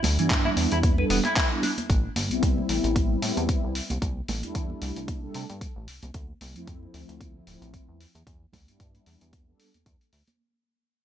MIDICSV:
0, 0, Header, 1, 5, 480
1, 0, Start_track
1, 0, Tempo, 530973
1, 1713, Time_signature, 4, 2, 24, 8
1, 9984, End_track
2, 0, Start_track
2, 0, Title_t, "Clean electric guitar"
2, 0, Program_c, 0, 27
2, 172, Note_on_c, 0, 52, 73
2, 249, Note_off_c, 0, 52, 0
2, 409, Note_on_c, 0, 64, 96
2, 440, Note_off_c, 0, 64, 0
2, 651, Note_on_c, 0, 64, 95
2, 702, Note_off_c, 0, 64, 0
2, 891, Note_on_c, 0, 71, 72
2, 942, Note_off_c, 0, 71, 0
2, 997, Note_on_c, 0, 59, 98
2, 1062, Note_off_c, 0, 59, 0
2, 1131, Note_on_c, 0, 64, 70
2, 1209, Note_off_c, 0, 64, 0
2, 1238, Note_on_c, 0, 64, 75
2, 1336, Note_off_c, 0, 64, 0
2, 1477, Note_on_c, 0, 62, 68
2, 1542, Note_off_c, 0, 62, 0
2, 9984, End_track
3, 0, Start_track
3, 0, Title_t, "Analog polysynth"
3, 0, Program_c, 1, 90
3, 162, Note_on_c, 1, 55, 72
3, 167, Note_on_c, 1, 59, 67
3, 172, Note_on_c, 1, 62, 69
3, 179, Note_on_c, 1, 64, 79
3, 852, Note_off_c, 1, 55, 0
3, 855, Note_off_c, 1, 59, 0
3, 858, Note_off_c, 1, 62, 0
3, 861, Note_off_c, 1, 64, 0
3, 884, Note_on_c, 1, 55, 81
3, 886, Note_on_c, 1, 59, 75
3, 889, Note_on_c, 1, 62, 74
3, 891, Note_on_c, 1, 69, 91
3, 1087, Note_off_c, 1, 55, 0
3, 1087, Note_off_c, 1, 59, 0
3, 1089, Note_off_c, 1, 62, 0
3, 1090, Note_off_c, 1, 69, 0
3, 1364, Note_on_c, 1, 55, 81
3, 1369, Note_on_c, 1, 59, 76
3, 1369, Note_on_c, 1, 62, 72
3, 1374, Note_on_c, 1, 64, 87
3, 1481, Note_off_c, 1, 55, 0
3, 1483, Note_off_c, 1, 59, 0
3, 1483, Note_off_c, 1, 62, 0
3, 1485, Note_off_c, 1, 64, 0
3, 2078, Note_on_c, 1, 55, 90
3, 2085, Note_on_c, 1, 59, 78
3, 2090, Note_on_c, 1, 60, 84
3, 2097, Note_on_c, 1, 64, 99
3, 2883, Note_off_c, 1, 55, 0
3, 2887, Note_off_c, 1, 59, 0
3, 2889, Note_off_c, 1, 60, 0
3, 2893, Note_off_c, 1, 64, 0
3, 2911, Note_on_c, 1, 55, 76
3, 2915, Note_on_c, 1, 59, 73
3, 2918, Note_on_c, 1, 60, 70
3, 2919, Note_on_c, 1, 64, 89
3, 3380, Note_off_c, 1, 55, 0
3, 3382, Note_off_c, 1, 59, 0
3, 3383, Note_off_c, 1, 60, 0
3, 3384, Note_off_c, 1, 64, 0
3, 3999, Note_on_c, 1, 55, 73
3, 4005, Note_on_c, 1, 57, 65
3, 4012, Note_on_c, 1, 62, 65
3, 4016, Note_on_c, 1, 64, 79
3, 4691, Note_off_c, 1, 55, 0
3, 4694, Note_off_c, 1, 57, 0
3, 4697, Note_off_c, 1, 62, 0
3, 4700, Note_off_c, 1, 64, 0
3, 4723, Note_on_c, 1, 55, 82
3, 4725, Note_on_c, 1, 57, 72
3, 4728, Note_on_c, 1, 62, 76
3, 4731, Note_on_c, 1, 69, 90
3, 4926, Note_off_c, 1, 55, 0
3, 4927, Note_off_c, 1, 57, 0
3, 4928, Note_off_c, 1, 62, 0
3, 4930, Note_off_c, 1, 69, 0
3, 5922, Note_on_c, 1, 53, 93
3, 5928, Note_on_c, 1, 57, 82
3, 5934, Note_on_c, 1, 60, 81
3, 5940, Note_on_c, 1, 64, 97
3, 6725, Note_off_c, 1, 53, 0
3, 6728, Note_off_c, 1, 57, 0
3, 6732, Note_off_c, 1, 60, 0
3, 6734, Note_off_c, 1, 64, 0
3, 6751, Note_on_c, 1, 53, 76
3, 6754, Note_on_c, 1, 57, 70
3, 6757, Note_on_c, 1, 60, 68
3, 6760, Note_on_c, 1, 64, 84
3, 7219, Note_off_c, 1, 53, 0
3, 7221, Note_off_c, 1, 57, 0
3, 7223, Note_off_c, 1, 60, 0
3, 7224, Note_off_c, 1, 64, 0
3, 7839, Note_on_c, 1, 55, 71
3, 7845, Note_on_c, 1, 59, 65
3, 7850, Note_on_c, 1, 62, 65
3, 7857, Note_on_c, 1, 64, 80
3, 8531, Note_off_c, 1, 55, 0
3, 8534, Note_off_c, 1, 59, 0
3, 8536, Note_off_c, 1, 62, 0
3, 8540, Note_off_c, 1, 64, 0
3, 8563, Note_on_c, 1, 55, 83
3, 8567, Note_on_c, 1, 59, 74
3, 8568, Note_on_c, 1, 62, 77
3, 8572, Note_on_c, 1, 69, 87
3, 8766, Note_off_c, 1, 55, 0
3, 8768, Note_off_c, 1, 59, 0
3, 8768, Note_off_c, 1, 62, 0
3, 8770, Note_off_c, 1, 69, 0
3, 9984, End_track
4, 0, Start_track
4, 0, Title_t, "Analog synth bass"
4, 0, Program_c, 2, 38
4, 34, Note_on_c, 2, 38, 89
4, 164, Note_off_c, 2, 38, 0
4, 169, Note_on_c, 2, 43, 42
4, 253, Note_off_c, 2, 43, 0
4, 275, Note_on_c, 2, 43, 74
4, 450, Note_off_c, 2, 43, 0
4, 513, Note_on_c, 2, 40, 79
4, 606, Note_off_c, 2, 40, 0
4, 651, Note_on_c, 2, 40, 78
4, 944, Note_off_c, 2, 40, 0
4, 995, Note_on_c, 2, 28, 100
4, 1087, Note_off_c, 2, 28, 0
4, 1716, Note_on_c, 2, 33, 90
4, 1890, Note_off_c, 2, 33, 0
4, 1954, Note_on_c, 2, 31, 91
4, 2082, Note_off_c, 2, 31, 0
4, 2087, Note_on_c, 2, 36, 41
4, 2172, Note_off_c, 2, 36, 0
4, 2194, Note_on_c, 2, 36, 76
4, 2369, Note_off_c, 2, 36, 0
4, 2434, Note_on_c, 2, 33, 79
4, 2527, Note_off_c, 2, 33, 0
4, 2566, Note_on_c, 2, 33, 82
4, 2861, Note_off_c, 2, 33, 0
4, 2914, Note_on_c, 2, 45, 92
4, 3007, Note_off_c, 2, 45, 0
4, 3048, Note_on_c, 2, 40, 92
4, 3206, Note_off_c, 2, 40, 0
4, 3287, Note_on_c, 2, 36, 76
4, 3446, Note_off_c, 2, 36, 0
4, 3529, Note_on_c, 2, 36, 80
4, 3602, Note_off_c, 2, 36, 0
4, 3635, Note_on_c, 2, 36, 95
4, 3809, Note_off_c, 2, 36, 0
4, 3877, Note_on_c, 2, 33, 89
4, 4006, Note_off_c, 2, 33, 0
4, 4011, Note_on_c, 2, 40, 41
4, 4094, Note_off_c, 2, 40, 0
4, 4114, Note_on_c, 2, 40, 74
4, 4289, Note_off_c, 2, 40, 0
4, 4356, Note_on_c, 2, 36, 81
4, 4448, Note_off_c, 2, 36, 0
4, 4491, Note_on_c, 2, 36, 77
4, 4784, Note_off_c, 2, 36, 0
4, 4837, Note_on_c, 2, 48, 87
4, 4928, Note_off_c, 2, 48, 0
4, 4969, Note_on_c, 2, 43, 91
4, 5127, Note_off_c, 2, 43, 0
4, 5209, Note_on_c, 2, 33, 79
4, 5311, Note_off_c, 2, 33, 0
4, 5316, Note_on_c, 2, 36, 42
4, 5422, Note_off_c, 2, 36, 0
4, 5451, Note_on_c, 2, 36, 79
4, 5523, Note_off_c, 2, 36, 0
4, 5555, Note_on_c, 2, 38, 91
4, 5730, Note_off_c, 2, 38, 0
4, 5795, Note_on_c, 2, 36, 88
4, 5924, Note_off_c, 2, 36, 0
4, 5929, Note_on_c, 2, 41, 39
4, 6013, Note_off_c, 2, 41, 0
4, 6036, Note_on_c, 2, 41, 75
4, 6210, Note_off_c, 2, 41, 0
4, 6274, Note_on_c, 2, 38, 80
4, 6367, Note_off_c, 2, 38, 0
4, 6407, Note_on_c, 2, 38, 77
4, 6702, Note_off_c, 2, 38, 0
4, 6753, Note_on_c, 2, 26, 88
4, 6846, Note_off_c, 2, 26, 0
4, 6886, Note_on_c, 2, 33, 91
4, 7045, Note_off_c, 2, 33, 0
4, 7127, Note_on_c, 2, 40, 78
4, 7286, Note_off_c, 2, 40, 0
4, 7367, Note_on_c, 2, 40, 77
4, 7441, Note_off_c, 2, 40, 0
4, 7475, Note_on_c, 2, 40, 93
4, 7650, Note_off_c, 2, 40, 0
4, 7715, Note_on_c, 2, 38, 88
4, 7845, Note_off_c, 2, 38, 0
4, 7850, Note_on_c, 2, 43, 39
4, 7934, Note_off_c, 2, 43, 0
4, 7957, Note_on_c, 2, 43, 73
4, 8130, Note_off_c, 2, 43, 0
4, 8196, Note_on_c, 2, 40, 80
4, 8288, Note_off_c, 2, 40, 0
4, 8330, Note_on_c, 2, 40, 78
4, 8623, Note_off_c, 2, 40, 0
4, 8811, Note_on_c, 2, 40, 39
4, 8894, Note_off_c, 2, 40, 0
4, 8916, Note_on_c, 2, 40, 94
4, 9008, Note_off_c, 2, 40, 0
4, 9156, Note_on_c, 2, 38, 78
4, 9248, Note_off_c, 2, 38, 0
4, 9984, End_track
5, 0, Start_track
5, 0, Title_t, "Drums"
5, 24, Note_on_c, 9, 64, 77
5, 27, Note_on_c, 9, 63, 100
5, 35, Note_on_c, 9, 62, 48
5, 36, Note_on_c, 9, 46, 99
5, 115, Note_off_c, 9, 64, 0
5, 117, Note_off_c, 9, 63, 0
5, 126, Note_off_c, 9, 46, 0
5, 126, Note_off_c, 9, 62, 0
5, 170, Note_on_c, 9, 42, 48
5, 260, Note_off_c, 9, 42, 0
5, 263, Note_on_c, 9, 62, 67
5, 274, Note_on_c, 9, 36, 113
5, 274, Note_on_c, 9, 39, 110
5, 275, Note_on_c, 9, 42, 71
5, 353, Note_off_c, 9, 62, 0
5, 365, Note_off_c, 9, 36, 0
5, 365, Note_off_c, 9, 39, 0
5, 365, Note_off_c, 9, 42, 0
5, 407, Note_on_c, 9, 63, 64
5, 497, Note_off_c, 9, 63, 0
5, 514, Note_on_c, 9, 46, 91
5, 605, Note_off_c, 9, 46, 0
5, 647, Note_on_c, 9, 42, 47
5, 655, Note_on_c, 9, 62, 44
5, 737, Note_off_c, 9, 42, 0
5, 745, Note_off_c, 9, 62, 0
5, 753, Note_on_c, 9, 42, 65
5, 754, Note_on_c, 9, 36, 119
5, 755, Note_on_c, 9, 63, 90
5, 844, Note_off_c, 9, 42, 0
5, 845, Note_off_c, 9, 36, 0
5, 845, Note_off_c, 9, 63, 0
5, 888, Note_on_c, 9, 62, 65
5, 978, Note_off_c, 9, 62, 0
5, 995, Note_on_c, 9, 46, 99
5, 1086, Note_off_c, 9, 46, 0
5, 1127, Note_on_c, 9, 39, 34
5, 1128, Note_on_c, 9, 42, 49
5, 1130, Note_on_c, 9, 63, 64
5, 1217, Note_off_c, 9, 39, 0
5, 1218, Note_off_c, 9, 42, 0
5, 1220, Note_off_c, 9, 63, 0
5, 1234, Note_on_c, 9, 39, 108
5, 1235, Note_on_c, 9, 36, 117
5, 1235, Note_on_c, 9, 42, 70
5, 1235, Note_on_c, 9, 62, 47
5, 1324, Note_off_c, 9, 39, 0
5, 1325, Note_off_c, 9, 36, 0
5, 1325, Note_off_c, 9, 42, 0
5, 1326, Note_off_c, 9, 62, 0
5, 1472, Note_on_c, 9, 62, 68
5, 1475, Note_on_c, 9, 46, 91
5, 1562, Note_off_c, 9, 62, 0
5, 1566, Note_off_c, 9, 46, 0
5, 1607, Note_on_c, 9, 63, 92
5, 1608, Note_on_c, 9, 42, 47
5, 1698, Note_off_c, 9, 63, 0
5, 1699, Note_off_c, 9, 42, 0
5, 1714, Note_on_c, 9, 42, 64
5, 1715, Note_on_c, 9, 36, 114
5, 1805, Note_off_c, 9, 36, 0
5, 1805, Note_off_c, 9, 42, 0
5, 1953, Note_on_c, 9, 63, 79
5, 1954, Note_on_c, 9, 46, 97
5, 2043, Note_off_c, 9, 63, 0
5, 2044, Note_off_c, 9, 46, 0
5, 2089, Note_on_c, 9, 42, 48
5, 2179, Note_off_c, 9, 42, 0
5, 2194, Note_on_c, 9, 36, 108
5, 2194, Note_on_c, 9, 42, 73
5, 2285, Note_off_c, 9, 36, 0
5, 2285, Note_off_c, 9, 42, 0
5, 2333, Note_on_c, 9, 63, 60
5, 2424, Note_off_c, 9, 63, 0
5, 2433, Note_on_c, 9, 46, 87
5, 2524, Note_off_c, 9, 46, 0
5, 2569, Note_on_c, 9, 42, 47
5, 2659, Note_off_c, 9, 42, 0
5, 2674, Note_on_c, 9, 36, 111
5, 2675, Note_on_c, 9, 42, 65
5, 2680, Note_on_c, 9, 63, 81
5, 2765, Note_off_c, 9, 36, 0
5, 2765, Note_off_c, 9, 42, 0
5, 2770, Note_off_c, 9, 63, 0
5, 2915, Note_on_c, 9, 46, 98
5, 3005, Note_off_c, 9, 46, 0
5, 3048, Note_on_c, 9, 42, 46
5, 3048, Note_on_c, 9, 63, 65
5, 3138, Note_off_c, 9, 63, 0
5, 3139, Note_off_c, 9, 42, 0
5, 3153, Note_on_c, 9, 42, 70
5, 3154, Note_on_c, 9, 36, 109
5, 3244, Note_off_c, 9, 36, 0
5, 3244, Note_off_c, 9, 42, 0
5, 3392, Note_on_c, 9, 46, 88
5, 3483, Note_off_c, 9, 46, 0
5, 3526, Note_on_c, 9, 63, 91
5, 3528, Note_on_c, 9, 42, 46
5, 3616, Note_off_c, 9, 63, 0
5, 3618, Note_off_c, 9, 42, 0
5, 3634, Note_on_c, 9, 36, 105
5, 3634, Note_on_c, 9, 42, 68
5, 3724, Note_off_c, 9, 36, 0
5, 3725, Note_off_c, 9, 42, 0
5, 3873, Note_on_c, 9, 46, 88
5, 3877, Note_on_c, 9, 64, 71
5, 3879, Note_on_c, 9, 63, 91
5, 3963, Note_off_c, 9, 46, 0
5, 3967, Note_off_c, 9, 64, 0
5, 3969, Note_off_c, 9, 63, 0
5, 4007, Note_on_c, 9, 42, 50
5, 4097, Note_off_c, 9, 42, 0
5, 4113, Note_on_c, 9, 42, 71
5, 4114, Note_on_c, 9, 36, 105
5, 4203, Note_off_c, 9, 42, 0
5, 4204, Note_off_c, 9, 36, 0
5, 4247, Note_on_c, 9, 63, 54
5, 4338, Note_off_c, 9, 63, 0
5, 4354, Note_on_c, 9, 46, 80
5, 4444, Note_off_c, 9, 46, 0
5, 4488, Note_on_c, 9, 42, 49
5, 4578, Note_off_c, 9, 42, 0
5, 4593, Note_on_c, 9, 42, 69
5, 4594, Note_on_c, 9, 36, 107
5, 4598, Note_on_c, 9, 63, 89
5, 4684, Note_off_c, 9, 36, 0
5, 4684, Note_off_c, 9, 42, 0
5, 4688, Note_off_c, 9, 63, 0
5, 4832, Note_on_c, 9, 46, 93
5, 4922, Note_off_c, 9, 46, 0
5, 4968, Note_on_c, 9, 42, 48
5, 4973, Note_on_c, 9, 63, 57
5, 5059, Note_off_c, 9, 42, 0
5, 5063, Note_off_c, 9, 63, 0
5, 5074, Note_on_c, 9, 36, 104
5, 5074, Note_on_c, 9, 42, 74
5, 5164, Note_off_c, 9, 36, 0
5, 5164, Note_off_c, 9, 42, 0
5, 5314, Note_on_c, 9, 46, 83
5, 5405, Note_off_c, 9, 46, 0
5, 5447, Note_on_c, 9, 42, 47
5, 5449, Note_on_c, 9, 63, 78
5, 5538, Note_off_c, 9, 42, 0
5, 5539, Note_off_c, 9, 63, 0
5, 5552, Note_on_c, 9, 42, 70
5, 5555, Note_on_c, 9, 36, 105
5, 5643, Note_off_c, 9, 42, 0
5, 5645, Note_off_c, 9, 36, 0
5, 5795, Note_on_c, 9, 46, 93
5, 5799, Note_on_c, 9, 63, 86
5, 5885, Note_off_c, 9, 46, 0
5, 5890, Note_off_c, 9, 63, 0
5, 5928, Note_on_c, 9, 42, 49
5, 6019, Note_off_c, 9, 42, 0
5, 6034, Note_on_c, 9, 36, 103
5, 6034, Note_on_c, 9, 42, 74
5, 6124, Note_off_c, 9, 42, 0
5, 6125, Note_off_c, 9, 36, 0
5, 6171, Note_on_c, 9, 63, 51
5, 6262, Note_off_c, 9, 63, 0
5, 6275, Note_on_c, 9, 46, 77
5, 6365, Note_off_c, 9, 46, 0
5, 6410, Note_on_c, 9, 42, 50
5, 6501, Note_off_c, 9, 42, 0
5, 6514, Note_on_c, 9, 36, 107
5, 6515, Note_on_c, 9, 42, 69
5, 6519, Note_on_c, 9, 63, 76
5, 6605, Note_off_c, 9, 36, 0
5, 6605, Note_off_c, 9, 42, 0
5, 6609, Note_off_c, 9, 63, 0
5, 6754, Note_on_c, 9, 46, 88
5, 6844, Note_off_c, 9, 46, 0
5, 6889, Note_on_c, 9, 42, 49
5, 6892, Note_on_c, 9, 63, 50
5, 6980, Note_off_c, 9, 42, 0
5, 6983, Note_off_c, 9, 63, 0
5, 6994, Note_on_c, 9, 36, 101
5, 6995, Note_on_c, 9, 42, 71
5, 7085, Note_off_c, 9, 36, 0
5, 7086, Note_off_c, 9, 42, 0
5, 7237, Note_on_c, 9, 46, 82
5, 7327, Note_off_c, 9, 46, 0
5, 7367, Note_on_c, 9, 63, 75
5, 7370, Note_on_c, 9, 42, 50
5, 7457, Note_off_c, 9, 63, 0
5, 7461, Note_off_c, 9, 42, 0
5, 7474, Note_on_c, 9, 36, 106
5, 7477, Note_on_c, 9, 42, 71
5, 7565, Note_off_c, 9, 36, 0
5, 7567, Note_off_c, 9, 42, 0
5, 7708, Note_on_c, 9, 64, 68
5, 7715, Note_on_c, 9, 36, 51
5, 7716, Note_on_c, 9, 46, 88
5, 7718, Note_on_c, 9, 63, 77
5, 7798, Note_off_c, 9, 64, 0
5, 7805, Note_off_c, 9, 36, 0
5, 7806, Note_off_c, 9, 46, 0
5, 7808, Note_off_c, 9, 63, 0
5, 7849, Note_on_c, 9, 42, 51
5, 7940, Note_off_c, 9, 42, 0
5, 7955, Note_on_c, 9, 36, 103
5, 7955, Note_on_c, 9, 42, 78
5, 8045, Note_off_c, 9, 42, 0
5, 8046, Note_off_c, 9, 36, 0
5, 8086, Note_on_c, 9, 63, 60
5, 8088, Note_on_c, 9, 42, 33
5, 8176, Note_off_c, 9, 63, 0
5, 8179, Note_off_c, 9, 42, 0
5, 8193, Note_on_c, 9, 46, 80
5, 8284, Note_off_c, 9, 46, 0
5, 8328, Note_on_c, 9, 42, 52
5, 8419, Note_off_c, 9, 42, 0
5, 8432, Note_on_c, 9, 63, 74
5, 8434, Note_on_c, 9, 42, 72
5, 8435, Note_on_c, 9, 36, 105
5, 8522, Note_off_c, 9, 63, 0
5, 8524, Note_off_c, 9, 42, 0
5, 8525, Note_off_c, 9, 36, 0
5, 8675, Note_on_c, 9, 46, 91
5, 8765, Note_off_c, 9, 46, 0
5, 8808, Note_on_c, 9, 42, 51
5, 8820, Note_on_c, 9, 63, 60
5, 8899, Note_off_c, 9, 42, 0
5, 8910, Note_off_c, 9, 63, 0
5, 8914, Note_on_c, 9, 42, 76
5, 8915, Note_on_c, 9, 36, 101
5, 9005, Note_off_c, 9, 36, 0
5, 9005, Note_off_c, 9, 42, 0
5, 9050, Note_on_c, 9, 42, 34
5, 9140, Note_off_c, 9, 42, 0
5, 9154, Note_on_c, 9, 46, 78
5, 9245, Note_off_c, 9, 46, 0
5, 9288, Note_on_c, 9, 42, 47
5, 9290, Note_on_c, 9, 63, 85
5, 9379, Note_off_c, 9, 42, 0
5, 9381, Note_off_c, 9, 63, 0
5, 9984, End_track
0, 0, End_of_file